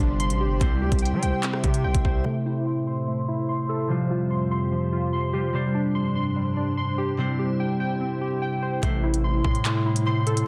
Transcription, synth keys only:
0, 0, Header, 1, 2, 480
1, 0, Start_track
1, 0, Key_signature, 0, "minor"
1, 0, Tempo, 410959
1, 712, Time_signature, 4, 2, 24, 8
1, 12236, End_track
2, 0, Start_track
2, 0, Title_t, "Synth keys"
2, 0, Program_c, 0, 88
2, 0, Note_on_c, 0, 55, 75
2, 0, Note_on_c, 0, 62, 82
2, 0, Note_on_c, 0, 84, 102
2, 218, Note_off_c, 0, 84, 0
2, 232, Note_on_c, 0, 84, 105
2, 471, Note_on_c, 0, 67, 86
2, 712, Note_off_c, 0, 55, 0
2, 712, Note_off_c, 0, 62, 0
2, 712, Note_off_c, 0, 67, 0
2, 712, Note_off_c, 0, 84, 0
2, 712, Note_on_c, 0, 60, 82
2, 952, Note_on_c, 0, 67, 80
2, 1194, Note_on_c, 0, 79, 80
2, 1417, Note_off_c, 0, 79, 0
2, 1431, Note_on_c, 0, 79, 101
2, 1658, Note_off_c, 0, 60, 0
2, 1672, Note_on_c, 0, 60, 76
2, 1898, Note_off_c, 0, 67, 0
2, 1912, Note_on_c, 0, 67, 85
2, 2138, Note_off_c, 0, 79, 0
2, 2152, Note_on_c, 0, 79, 96
2, 2393, Note_on_c, 0, 72, 86
2, 2631, Note_on_c, 0, 57, 88
2, 2632, Note_off_c, 0, 60, 0
2, 2632, Note_off_c, 0, 67, 0
2, 2632, Note_off_c, 0, 79, 0
2, 2633, Note_off_c, 0, 72, 0
2, 2871, Note_on_c, 0, 64, 73
2, 3114, Note_on_c, 0, 84, 76
2, 3338, Note_off_c, 0, 84, 0
2, 3352, Note_on_c, 0, 84, 97
2, 3578, Note_off_c, 0, 57, 0
2, 3592, Note_on_c, 0, 57, 66
2, 3819, Note_off_c, 0, 64, 0
2, 3833, Note_on_c, 0, 64, 75
2, 4061, Note_off_c, 0, 84, 0
2, 4075, Note_on_c, 0, 84, 104
2, 4311, Note_on_c, 0, 69, 84
2, 4549, Note_on_c, 0, 53, 91
2, 4552, Note_off_c, 0, 57, 0
2, 4552, Note_off_c, 0, 69, 0
2, 4553, Note_off_c, 0, 64, 0
2, 4554, Note_off_c, 0, 84, 0
2, 4794, Note_on_c, 0, 65, 79
2, 5029, Note_on_c, 0, 84, 78
2, 5258, Note_off_c, 0, 84, 0
2, 5272, Note_on_c, 0, 84, 92
2, 5500, Note_off_c, 0, 53, 0
2, 5514, Note_on_c, 0, 53, 71
2, 5738, Note_off_c, 0, 65, 0
2, 5752, Note_on_c, 0, 65, 73
2, 5976, Note_off_c, 0, 84, 0
2, 5990, Note_on_c, 0, 84, 103
2, 6228, Note_on_c, 0, 67, 78
2, 6470, Note_off_c, 0, 67, 0
2, 6471, Note_off_c, 0, 84, 0
2, 6472, Note_off_c, 0, 65, 0
2, 6472, Note_on_c, 0, 55, 87
2, 6473, Note_off_c, 0, 53, 0
2, 6711, Note_on_c, 0, 62, 78
2, 6949, Note_on_c, 0, 84, 84
2, 7174, Note_off_c, 0, 84, 0
2, 7188, Note_on_c, 0, 84, 91
2, 7417, Note_off_c, 0, 55, 0
2, 7431, Note_on_c, 0, 55, 72
2, 7657, Note_off_c, 0, 62, 0
2, 7671, Note_on_c, 0, 62, 77
2, 7898, Note_off_c, 0, 84, 0
2, 7912, Note_on_c, 0, 84, 95
2, 8152, Note_on_c, 0, 67, 84
2, 8391, Note_off_c, 0, 55, 0
2, 8392, Note_off_c, 0, 62, 0
2, 8392, Note_off_c, 0, 67, 0
2, 8392, Note_off_c, 0, 84, 0
2, 8392, Note_on_c, 0, 60, 79
2, 8632, Note_on_c, 0, 67, 73
2, 8874, Note_on_c, 0, 79, 81
2, 9097, Note_off_c, 0, 79, 0
2, 9111, Note_on_c, 0, 79, 92
2, 9338, Note_off_c, 0, 60, 0
2, 9352, Note_on_c, 0, 60, 73
2, 9579, Note_off_c, 0, 67, 0
2, 9593, Note_on_c, 0, 67, 78
2, 9819, Note_off_c, 0, 79, 0
2, 9833, Note_on_c, 0, 79, 91
2, 10073, Note_on_c, 0, 72, 80
2, 10310, Note_on_c, 0, 57, 86
2, 10312, Note_off_c, 0, 60, 0
2, 10312, Note_off_c, 0, 67, 0
2, 10312, Note_off_c, 0, 79, 0
2, 10313, Note_off_c, 0, 72, 0
2, 10550, Note_on_c, 0, 64, 78
2, 10793, Note_on_c, 0, 84, 81
2, 11018, Note_off_c, 0, 84, 0
2, 11032, Note_on_c, 0, 84, 102
2, 11258, Note_off_c, 0, 57, 0
2, 11272, Note_on_c, 0, 57, 72
2, 11499, Note_off_c, 0, 64, 0
2, 11513, Note_on_c, 0, 64, 77
2, 11741, Note_off_c, 0, 84, 0
2, 11755, Note_on_c, 0, 84, 107
2, 11992, Note_on_c, 0, 69, 85
2, 12232, Note_off_c, 0, 57, 0
2, 12232, Note_off_c, 0, 64, 0
2, 12232, Note_off_c, 0, 69, 0
2, 12234, Note_off_c, 0, 84, 0
2, 12236, End_track
0, 0, End_of_file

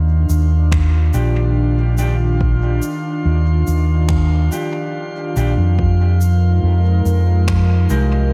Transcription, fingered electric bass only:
0, 0, Header, 1, 2, 480
1, 0, Start_track
1, 0, Tempo, 845070
1, 1366, Time_signature, 4, 2, 24, 8
1, 4733, End_track
2, 0, Start_track
2, 0, Title_t, "Fingered electric bass"
2, 0, Program_c, 0, 33
2, 0, Note_on_c, 0, 39, 96
2, 138, Note_off_c, 0, 39, 0
2, 167, Note_on_c, 0, 39, 95
2, 624, Note_off_c, 0, 39, 0
2, 647, Note_on_c, 0, 34, 81
2, 1584, Note_off_c, 0, 34, 0
2, 1847, Note_on_c, 0, 39, 95
2, 2058, Note_off_c, 0, 39, 0
2, 2088, Note_on_c, 0, 39, 95
2, 2544, Note_off_c, 0, 39, 0
2, 3047, Note_on_c, 0, 34, 80
2, 3153, Note_off_c, 0, 34, 0
2, 3168, Note_on_c, 0, 41, 99
2, 3744, Note_off_c, 0, 41, 0
2, 3766, Note_on_c, 0, 41, 94
2, 3978, Note_off_c, 0, 41, 0
2, 4006, Note_on_c, 0, 41, 99
2, 4463, Note_off_c, 0, 41, 0
2, 4489, Note_on_c, 0, 36, 80
2, 4733, Note_off_c, 0, 36, 0
2, 4733, End_track
0, 0, End_of_file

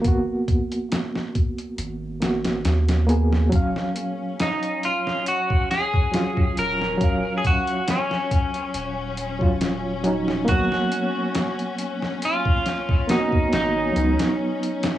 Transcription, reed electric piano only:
0, 0, Header, 1, 2, 480
1, 0, Start_track
1, 0, Key_signature, -6, "minor"
1, 0, Tempo, 869565
1, 25, Time_signature, 4, 2, 24, 8
1, 8270, End_track
2, 0, Start_track
2, 0, Title_t, "Reed electric piano"
2, 0, Program_c, 0, 4
2, 0, Control_c, 0, 64, 127
2, 0, Note_on_c, 0, 58, 82
2, 0, Note_on_c, 0, 59, 69
2, 0, Note_on_c, 0, 66, 88
2, 8, Note_off_c, 0, 58, 0
2, 8, Note_on_c, 0, 58, 73
2, 26, Note_off_c, 0, 59, 0
2, 26, Note_on_c, 0, 59, 71
2, 44, Note_off_c, 0, 66, 0
2, 44, Note_on_c, 0, 66, 81
2, 1194, Note_off_c, 0, 58, 0
2, 1203, Note_off_c, 0, 59, 0
2, 1212, Note_off_c, 0, 66, 0
2, 1215, Note_on_c, 0, 58, 62
2, 1223, Note_on_c, 0, 59, 60
2, 1231, Note_on_c, 0, 66, 78
2, 1673, Note_off_c, 0, 58, 0
2, 1677, Note_off_c, 0, 59, 0
2, 1681, Note_off_c, 0, 66, 0
2, 1695, Note_on_c, 0, 58, 80
2, 1703, Note_on_c, 0, 59, 76
2, 1711, Note_on_c, 0, 68, 90
2, 1913, Note_off_c, 0, 58, 0
2, 1917, Note_off_c, 0, 59, 0
2, 1921, Note_off_c, 0, 68, 0
2, 1929, Note_on_c, 0, 54, 92
2, 1945, Note_on_c, 0, 61, 83
2, 1953, Control_c, 0, 64, 0
2, 1963, Note_on_c, 0, 77, 99
2, 2040, Control_c, 0, 64, 127
2, 3350, Note_off_c, 0, 54, 0
2, 3358, Note_off_c, 0, 61, 0
2, 3367, Note_off_c, 0, 77, 0
2, 3376, Note_on_c, 0, 54, 79
2, 3384, Note_on_c, 0, 61, 72
2, 3395, Note_on_c, 0, 65, 86
2, 3833, Note_off_c, 0, 54, 0
2, 3838, Note_off_c, 0, 61, 0
2, 3843, Note_off_c, 0, 65, 0
2, 3849, Note_on_c, 0, 54, 77
2, 3867, Note_on_c, 0, 61, 71
2, 3884, Note_on_c, 0, 77, 84
2, 5154, Note_off_c, 0, 54, 0
2, 5163, Note_off_c, 0, 61, 0
2, 5172, Note_off_c, 0, 77, 0
2, 5182, Note_on_c, 0, 54, 76
2, 5189, Note_on_c, 0, 61, 71
2, 5201, Note_on_c, 0, 65, 85
2, 5513, Note_off_c, 0, 54, 0
2, 5516, Note_off_c, 0, 61, 0
2, 5522, Note_off_c, 0, 65, 0
2, 5541, Note_on_c, 0, 54, 82
2, 5550, Note_on_c, 0, 61, 76
2, 5559, Note_on_c, 0, 63, 93
2, 5756, Note_off_c, 0, 54, 0
2, 5761, Note_off_c, 0, 61, 0
2, 5765, Note_off_c, 0, 63, 0
2, 5767, Note_on_c, 0, 58, 94
2, 5785, Note_on_c, 0, 59, 84
2, 5791, Control_c, 0, 64, 0
2, 5804, Note_on_c, 0, 54, 101
2, 5899, Control_c, 0, 64, 127
2, 7189, Note_off_c, 0, 58, 0
2, 7198, Note_off_c, 0, 59, 0
2, 7208, Note_off_c, 0, 54, 0
2, 7216, Note_on_c, 0, 58, 83
2, 7225, Note_on_c, 0, 59, 78
2, 7235, Note_on_c, 0, 66, 87
2, 7674, Note_off_c, 0, 58, 0
2, 7678, Note_off_c, 0, 59, 0
2, 7683, Note_off_c, 0, 66, 0
2, 7686, Note_on_c, 0, 54, 78
2, 7707, Note_on_c, 0, 59, 73
2, 7713, Control_c, 0, 64, 0
2, 7722, Note_on_c, 0, 63, 87
2, 7799, Control_c, 0, 64, 127
2, 8270, Note_off_c, 0, 54, 0
2, 8270, Note_off_c, 0, 59, 0
2, 8270, Note_off_c, 0, 63, 0
2, 8270, End_track
0, 0, End_of_file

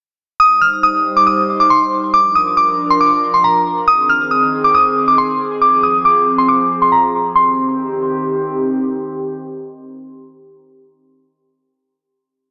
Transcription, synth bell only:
0, 0, Header, 1, 2, 480
1, 0, Start_track
1, 0, Key_signature, -3, "minor"
1, 0, Tempo, 434783
1, 440, Time_signature, 4, 2, 24, 8
1, 13810, End_track
2, 0, Start_track
2, 0, Title_t, "Synth bell"
2, 0, Program_c, 0, 98
2, 440, Note_on_c, 0, 87, 99
2, 667, Note_off_c, 0, 87, 0
2, 679, Note_on_c, 0, 89, 80
2, 906, Note_off_c, 0, 89, 0
2, 920, Note_on_c, 0, 87, 82
2, 1265, Note_off_c, 0, 87, 0
2, 1287, Note_on_c, 0, 86, 80
2, 1394, Note_off_c, 0, 86, 0
2, 1400, Note_on_c, 0, 87, 75
2, 1745, Note_off_c, 0, 87, 0
2, 1767, Note_on_c, 0, 86, 77
2, 1874, Note_off_c, 0, 86, 0
2, 1880, Note_on_c, 0, 84, 80
2, 2107, Note_off_c, 0, 84, 0
2, 2359, Note_on_c, 0, 86, 93
2, 2586, Note_off_c, 0, 86, 0
2, 2599, Note_on_c, 0, 87, 74
2, 2826, Note_off_c, 0, 87, 0
2, 2838, Note_on_c, 0, 86, 80
2, 3184, Note_off_c, 0, 86, 0
2, 3207, Note_on_c, 0, 84, 78
2, 3313, Note_off_c, 0, 84, 0
2, 3319, Note_on_c, 0, 86, 91
2, 3664, Note_off_c, 0, 86, 0
2, 3685, Note_on_c, 0, 84, 75
2, 3793, Note_off_c, 0, 84, 0
2, 3800, Note_on_c, 0, 82, 75
2, 4251, Note_off_c, 0, 82, 0
2, 4279, Note_on_c, 0, 87, 100
2, 4506, Note_off_c, 0, 87, 0
2, 4520, Note_on_c, 0, 89, 87
2, 4747, Note_off_c, 0, 89, 0
2, 4759, Note_on_c, 0, 87, 78
2, 5105, Note_off_c, 0, 87, 0
2, 5126, Note_on_c, 0, 86, 81
2, 5233, Note_off_c, 0, 86, 0
2, 5239, Note_on_c, 0, 87, 86
2, 5585, Note_off_c, 0, 87, 0
2, 5607, Note_on_c, 0, 86, 79
2, 5713, Note_off_c, 0, 86, 0
2, 5720, Note_on_c, 0, 84, 84
2, 5947, Note_off_c, 0, 84, 0
2, 6199, Note_on_c, 0, 86, 91
2, 6426, Note_off_c, 0, 86, 0
2, 6440, Note_on_c, 0, 87, 77
2, 6667, Note_off_c, 0, 87, 0
2, 6680, Note_on_c, 0, 86, 74
2, 7025, Note_off_c, 0, 86, 0
2, 7048, Note_on_c, 0, 84, 79
2, 7154, Note_off_c, 0, 84, 0
2, 7160, Note_on_c, 0, 86, 79
2, 7505, Note_off_c, 0, 86, 0
2, 7528, Note_on_c, 0, 84, 76
2, 7634, Note_off_c, 0, 84, 0
2, 7640, Note_on_c, 0, 82, 73
2, 8091, Note_off_c, 0, 82, 0
2, 8120, Note_on_c, 0, 84, 84
2, 9516, Note_off_c, 0, 84, 0
2, 13810, End_track
0, 0, End_of_file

